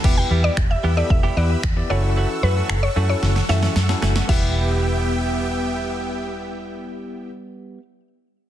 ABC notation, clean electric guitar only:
X:1
M:4/4
L:1/16
Q:1/4=113
K:Edor
V:1 name="Clean electric guitar"
[G,B,EG]2 [G,B,EG] [G,B,EG] z2 [G,B,EG]2 z [G,B,EG]2 z3 [E,A,CF] [E,A,CF] | [E,A,CF]2 [E,A,CF] [E,A,CF] z2 [E,A,CF]2 z2 [E,A,CF] [E,A,CF] z2 [E,A,CF] [E,A,CF] | [G,B,EG]16- | [G,B,EG]16 |]